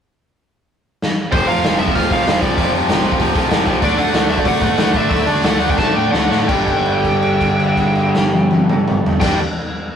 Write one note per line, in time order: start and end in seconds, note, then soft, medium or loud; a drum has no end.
1.02 snare medium
1.32 1.47 F1 medium
1.32 1.48 F2 medium
1.32 1.47 C3 medium
1.32 1.47 F3 loud
1.32 1.48 C5 loud
1.32 kick loud
1.32 open hi-hat medium
1.47 1.63 F2 medium
1.47 1.62 F2 medium
1.47 1.62 C3 medium
1.47 1.64 F3 medium
1.47 1.79 F5 loud
1.47 open hi-hat medium
1.63 1.78 F1 loud
1.63 1.79 F2 medium
1.63 1.78 C3 loud
1.63 1.78 F3 loud
1.63 snare loud
1.63 open hi-hat medium
1.78 1.94 F1 medium
1.78 1.94 F2 medium
1.78 1.94 C3 medium
1.78 1.95 F3 loud
1.78 1.95 E5 loud
1.78 open hi-hat medium
1.88 kick medium
1.95 2.10 D2 medium
1.95 2.09 F2 medium
1.95 2.09 C3 loud
1.95 2.09 F3 loud
1.95 2.11 F5 loud
1.95 kick medium
1.95 open hi-hat medium
2.10 2.25 C2 medium
2.10 2.24 F2 medium
2.10 2.25 C3 medium
2.10 2.25 F3 medium
2.10 2.41 F5 loud
2.10 kick medium
2.10 open hi-hat medium
2.25 2.40 F1 medium
2.25 2.40 F2 medium
2.25 2.40 C3 loud
2.25 2.40 F3 loud
2.25 snare loud
2.25 open hi-hat medium
2.41 2.56 C2 medium
2.41 2.56 F2 medium
2.41 2.57 C3 medium
2.41 2.57 F3 medium
2.41 2.71 D5 medium
2.41 kick medium
2.41 open hi-hat medium
2.57 2.71 F1 medium
2.57 2.72 F2 loud
2.57 2.72 C3 loud
2.57 2.71 F3 loud
2.57 kick medium
2.57 open hi-hat medium
2.72 2.87 F2 medium
2.72 2.88 C3 medium
2.72 2.88 F3 medium
2.72 open hi-hat medium
2.88 3.03 F1 medium
2.88 3.03 F2 medium
2.88 3.03 C3 loud
2.88 3.03 F3 loud
2.88 snare loud
2.88 open hi-hat medium
3.03 3.18 F1 medium
3.03 3.17 F2 medium
3.03 3.18 C3 medium
3.03 3.18 F3 loud
3.03 open hi-hat medium
3.12 kick medium
3.19 3.34 D2 medium
3.19 3.35 F2 medium
3.19 3.35 C3 loud
3.19 3.34 F3 loud
3.19 kick medium
3.19 open hi-hat medium
3.35 3.50 C2 medium
3.35 3.49 F2 medium
3.35 3.49 C3 medium
3.35 3.49 F3 medium
3.35 kick loud
3.35 open hi-hat medium
3.50 3.66 F1 medium
3.50 3.65 F2 medium
3.50 3.65 C3 loud
3.50 3.65 F3 medium
3.50 snare loud
3.50 open hi-hat medium
3.66 3.81 C2 medium
3.66 3.82 F2 medium
3.66 3.80 C3 medium
3.66 3.81 F3 medium
3.66 kick medium
3.66 open hi-hat medium
3.81 3.97 D2 loud
3.81 3.97 D3 loud
3.81 3.97 A3 loud
3.81 3.97 D4 loud
3.81 4.00 D5 medium
3.81 kick medium
3.81 open hi-hat medium
3.97 4.12 D3 medium
3.97 4.12 A3 medium
3.97 4.13 D4 medium
3.97 4.31 F#5 loud
3.97 open hi-hat medium
4.13 4.28 D2 loud
4.13 4.29 D3 loud
4.13 4.29 A3 loud
4.13 4.28 D4 loud
4.13 snare loud
4.13 open hi-hat medium
4.28 4.44 D2 medium
4.28 4.43 D3 medium
4.28 4.43 A3 medium
4.28 4.45 D4 loud
4.28 4.39 E5 medium
4.28 open hi-hat medium
4.38 4.47 D5 medium
4.38 kick medium
4.44 4.60 C3 medium
4.44 4.59 D3 loud
4.44 4.59 A3 loud
4.44 4.60 D4 loud
4.44 4.97 F#5 loud
4.44 kick loud
4.44 open hi-hat medium
4.60 4.76 A2 loud
4.60 4.75 D3 medium
4.60 4.75 A3 medium
4.60 4.76 D4 medium
4.60 kick medium
4.60 open hi-hat medium
4.77 4.92 D2 medium
4.77 4.93 D3 medium
4.77 4.93 A3 loud
4.77 4.94 D4 loud
4.77 snare loud
4.77 open hi-hat medium
4.94 5.09 A2 medium
4.94 5.08 D3 medium
4.94 5.09 A3 medium
4.94 5.09 D4 loud
4.94 5.26 E5 medium
4.94 kick medium
4.94 open hi-hat medium
5.09 5.26 D2 loud
5.09 5.26 D3 loud
5.09 5.26 A3 loud
5.09 5.25 D4 loud
5.09 kick loud
5.09 open hi-hat medium
5.27 5.42 D3 medium
5.27 5.42 A3 loud
5.27 5.43 D4 loud
5.27 5.45 D5 loud
5.27 open hi-hat medium
5.43 5.59 D2 loud
5.43 5.60 D3 medium
5.43 5.59 A3 loud
5.43 5.59 D4 loud
5.43 5.70 F#5 medium
5.43 snare loud
5.43 open hi-hat medium
5.60 5.76 D2 medium
5.60 5.75 D3 medium
5.60 5.76 A3 medium
5.60 5.76 D4 loud
5.60 open hi-hat medium
5.69 5.74 G5 medium
5.69 kick medium
5.76 5.94 C3 medium
5.76 5.94 D3 medium
5.76 5.94 A3 loud
5.76 5.93 D4 loud
5.76 5.96 A5 loud
5.76 kick medium
5.76 snare medium
5.95 6.11 A2 medium
5.95 6.11 D3 medium
5.95 6.11 A3 medium
5.95 6.12 D4 medium
5.95 6.12 G5 medium
6.12 6.29 D2 medium
6.12 6.29 D3 loud
6.12 6.29 A3 loud
6.12 6.28 D4 loud
6.12 6.38 F#5 medium
6.12 snare medium
6.29 6.48 A2 medium
6.29 6.48 D3 medium
6.29 6.47 A3 medium
6.29 6.47 D4 medium
6.29 snare medium
6.47 9.12 G1 medium
6.47 9.19 G2 medium
6.47 9.21 D3 medium
6.47 9.23 G3 loud
6.47 9.12 G5 medium
6.47 kick loud
6.47 crash medium
6.67 kick medium
6.67 crash soft
6.85 crash soft
7.04 kick medium
7.04 crash soft
7.22 crash soft
7.41 kick medium
7.41 crash medium
7.59 crash medium
7.77 kick medium
7.77 crash soft
7.95 crash soft
8.15 snare medium
8.33 high tom medium
8.51 high tom medium
8.69 mid tom loud
8.88 mid tom loud
9.06 floor tom loud
9.20 9.36 G1 medium
9.20 9.37 G2 medium
9.20 9.38 D3 loud
9.20 9.36 G5 medium
9.20 kick loud
9.20 snare medium
9.20 crash loud
9.24 9.39 G3 loud